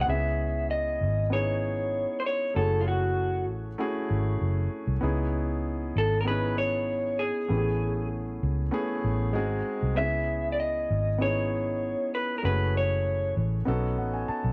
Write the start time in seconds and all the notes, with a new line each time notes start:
0.01 F#5
0.06 C#2 B3 C#4 E4 G#4 E5
0.71 D#5
1.01 G#1
1.30 B3 C#4 D#4 E4 G#4 C#5
2.20 C5
2.26 C#5
2.54 F#1 A3 C#4 E4 F#4 G#4 A4
2.81 F4
2.88 F#4
3.49 A1
3.78 A3 C#4 E4 F#4 G#4
4.10 G#1
4.41 F#1
4.87 C2
5.01 C#2 B3 C#4 D#4 E4 G#4
5.96 G#1 A4
6.21 A#4
6.25 B3 C#4 D#4 E4 G#4 B4
6.58 C#5
7.19 G#4
7.48 A1 A3 B3 C#4 E4 G4
7.57 G#4
8.43 C#2
8.71 A3 B3 C#4 E4 G#4
9.04 A1
9.33 G#1 G#3 C4 D#4 F#4 G#4
9.82 C2
9.95 C#2 B3 C#4 E4 G#4 E5
10.52 D5
10.60 D#5
10.90 G#1
11.18 B3 C#4 D#4 E4 G#4 C#5
12.15 B4
12.38 A#4
12.42 F#1 G#3 C#4 E4 F#4 G#4 B4
12.49 A3
12.77 C#5
13.37 A1
13.65 B1 B3 C#4 D#4 F#4 A4
13.98 A1 F#5
14.14 G#5
14.28 A5, muted fingered electric bass stroke
14.44 B1